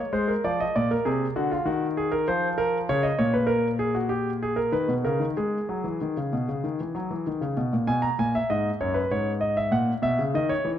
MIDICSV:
0, 0, Header, 1, 2, 480
1, 0, Start_track
1, 0, Key_signature, 5, "minor"
1, 0, Tempo, 612870
1, 350, Time_signature, 4, 2, 24, 8
1, 3229, Tempo, 626959
1, 6109, Tempo, 615385
1, 8372, End_track
2, 0, Start_track
2, 0, Title_t, "Grand piano"
2, 0, Program_c, 0, 0
2, 0, Note_on_c, 0, 73, 54
2, 97, Note_off_c, 0, 73, 0
2, 99, Note_on_c, 0, 56, 77
2, 100, Note_on_c, 0, 72, 67
2, 217, Note_on_c, 0, 70, 59
2, 221, Note_off_c, 0, 72, 0
2, 251, Note_off_c, 0, 56, 0
2, 340, Note_off_c, 0, 70, 0
2, 347, Note_on_c, 0, 53, 67
2, 348, Note_on_c, 0, 74, 73
2, 466, Note_off_c, 0, 74, 0
2, 473, Note_on_c, 0, 75, 79
2, 497, Note_off_c, 0, 53, 0
2, 588, Note_off_c, 0, 75, 0
2, 592, Note_on_c, 0, 74, 79
2, 595, Note_on_c, 0, 46, 64
2, 708, Note_off_c, 0, 74, 0
2, 713, Note_on_c, 0, 70, 70
2, 742, Note_off_c, 0, 46, 0
2, 824, Note_on_c, 0, 68, 70
2, 827, Note_on_c, 0, 48, 70
2, 828, Note_off_c, 0, 70, 0
2, 975, Note_off_c, 0, 68, 0
2, 977, Note_off_c, 0, 48, 0
2, 1065, Note_on_c, 0, 66, 79
2, 1067, Note_on_c, 0, 50, 68
2, 1184, Note_off_c, 0, 66, 0
2, 1185, Note_on_c, 0, 65, 72
2, 1217, Note_off_c, 0, 50, 0
2, 1296, Note_on_c, 0, 51, 72
2, 1298, Note_on_c, 0, 66, 80
2, 1304, Note_off_c, 0, 65, 0
2, 1450, Note_off_c, 0, 66, 0
2, 1545, Note_on_c, 0, 68, 71
2, 1657, Note_on_c, 0, 70, 77
2, 1663, Note_off_c, 0, 68, 0
2, 1766, Note_off_c, 0, 51, 0
2, 1779, Note_off_c, 0, 70, 0
2, 1784, Note_on_c, 0, 72, 79
2, 1785, Note_on_c, 0, 53, 68
2, 1933, Note_off_c, 0, 72, 0
2, 2019, Note_on_c, 0, 70, 86
2, 2169, Note_off_c, 0, 70, 0
2, 2250, Note_off_c, 0, 53, 0
2, 2265, Note_on_c, 0, 49, 75
2, 2265, Note_on_c, 0, 73, 91
2, 2373, Note_on_c, 0, 75, 79
2, 2381, Note_off_c, 0, 73, 0
2, 2414, Note_off_c, 0, 49, 0
2, 2495, Note_off_c, 0, 75, 0
2, 2495, Note_on_c, 0, 73, 80
2, 2498, Note_on_c, 0, 46, 69
2, 2613, Note_on_c, 0, 71, 74
2, 2616, Note_off_c, 0, 73, 0
2, 2714, Note_on_c, 0, 70, 84
2, 2735, Note_off_c, 0, 71, 0
2, 2873, Note_off_c, 0, 70, 0
2, 2969, Note_on_c, 0, 68, 73
2, 3091, Note_on_c, 0, 66, 69
2, 3094, Note_off_c, 0, 68, 0
2, 3204, Note_on_c, 0, 67, 73
2, 3216, Note_off_c, 0, 66, 0
2, 3359, Note_off_c, 0, 67, 0
2, 3461, Note_on_c, 0, 68, 67
2, 3565, Note_on_c, 0, 70, 72
2, 3578, Note_off_c, 0, 68, 0
2, 3669, Note_off_c, 0, 46, 0
2, 3687, Note_on_c, 0, 51, 59
2, 3690, Note_off_c, 0, 70, 0
2, 3690, Note_on_c, 0, 71, 73
2, 3811, Note_off_c, 0, 51, 0
2, 3811, Note_on_c, 0, 47, 56
2, 3843, Note_off_c, 0, 71, 0
2, 3933, Note_off_c, 0, 47, 0
2, 3935, Note_on_c, 0, 70, 69
2, 3938, Note_on_c, 0, 49, 61
2, 4050, Note_on_c, 0, 51, 60
2, 4058, Note_off_c, 0, 49, 0
2, 4087, Note_off_c, 0, 70, 0
2, 4174, Note_off_c, 0, 51, 0
2, 4183, Note_on_c, 0, 68, 57
2, 4186, Note_on_c, 0, 56, 60
2, 4336, Note_off_c, 0, 56, 0
2, 4427, Note_on_c, 0, 54, 57
2, 4544, Note_off_c, 0, 54, 0
2, 4544, Note_on_c, 0, 52, 60
2, 4662, Note_off_c, 0, 52, 0
2, 4676, Note_on_c, 0, 51, 56
2, 4789, Note_off_c, 0, 51, 0
2, 4798, Note_on_c, 0, 49, 53
2, 4910, Note_off_c, 0, 49, 0
2, 4917, Note_on_c, 0, 47, 53
2, 5030, Note_off_c, 0, 47, 0
2, 5039, Note_on_c, 0, 49, 50
2, 5151, Note_off_c, 0, 49, 0
2, 5154, Note_on_c, 0, 51, 55
2, 5268, Note_off_c, 0, 51, 0
2, 5282, Note_on_c, 0, 52, 53
2, 5391, Note_on_c, 0, 54, 53
2, 5392, Note_off_c, 0, 52, 0
2, 5506, Note_off_c, 0, 54, 0
2, 5512, Note_on_c, 0, 52, 51
2, 5627, Note_off_c, 0, 52, 0
2, 5636, Note_on_c, 0, 51, 53
2, 5747, Note_on_c, 0, 49, 54
2, 5749, Note_off_c, 0, 51, 0
2, 5837, Note_off_c, 0, 68, 0
2, 5864, Note_off_c, 0, 49, 0
2, 5868, Note_on_c, 0, 47, 57
2, 5984, Note_off_c, 0, 47, 0
2, 5990, Note_on_c, 0, 46, 56
2, 6101, Note_on_c, 0, 80, 83
2, 6103, Note_on_c, 0, 47, 62
2, 6104, Note_off_c, 0, 46, 0
2, 6216, Note_on_c, 0, 82, 77
2, 6221, Note_off_c, 0, 80, 0
2, 6254, Note_off_c, 0, 47, 0
2, 6338, Note_off_c, 0, 82, 0
2, 6346, Note_on_c, 0, 46, 61
2, 6348, Note_on_c, 0, 80, 76
2, 6465, Note_off_c, 0, 80, 0
2, 6472, Note_on_c, 0, 76, 76
2, 6496, Note_off_c, 0, 46, 0
2, 6587, Note_off_c, 0, 76, 0
2, 6588, Note_on_c, 0, 75, 77
2, 6589, Note_on_c, 0, 44, 61
2, 6737, Note_off_c, 0, 44, 0
2, 6737, Note_off_c, 0, 75, 0
2, 6828, Note_on_c, 0, 42, 59
2, 6828, Note_on_c, 0, 73, 74
2, 6934, Note_on_c, 0, 71, 69
2, 6944, Note_off_c, 0, 73, 0
2, 6976, Note_off_c, 0, 42, 0
2, 7057, Note_off_c, 0, 71, 0
2, 7065, Note_on_c, 0, 44, 57
2, 7069, Note_on_c, 0, 73, 75
2, 7217, Note_off_c, 0, 73, 0
2, 7297, Note_on_c, 0, 75, 73
2, 7418, Note_off_c, 0, 75, 0
2, 7423, Note_on_c, 0, 76, 74
2, 7532, Note_off_c, 0, 44, 0
2, 7536, Note_on_c, 0, 46, 65
2, 7540, Note_on_c, 0, 78, 77
2, 7541, Note_off_c, 0, 76, 0
2, 7688, Note_off_c, 0, 46, 0
2, 7691, Note_off_c, 0, 78, 0
2, 7776, Note_on_c, 0, 47, 64
2, 7780, Note_on_c, 0, 76, 85
2, 7898, Note_off_c, 0, 47, 0
2, 7907, Note_on_c, 0, 49, 61
2, 7931, Note_off_c, 0, 76, 0
2, 8024, Note_off_c, 0, 49, 0
2, 8027, Note_on_c, 0, 51, 67
2, 8033, Note_on_c, 0, 75, 85
2, 8144, Note_on_c, 0, 73, 80
2, 8146, Note_off_c, 0, 75, 0
2, 8176, Note_off_c, 0, 51, 0
2, 8263, Note_on_c, 0, 52, 64
2, 8294, Note_off_c, 0, 73, 0
2, 8372, Note_off_c, 0, 52, 0
2, 8372, End_track
0, 0, End_of_file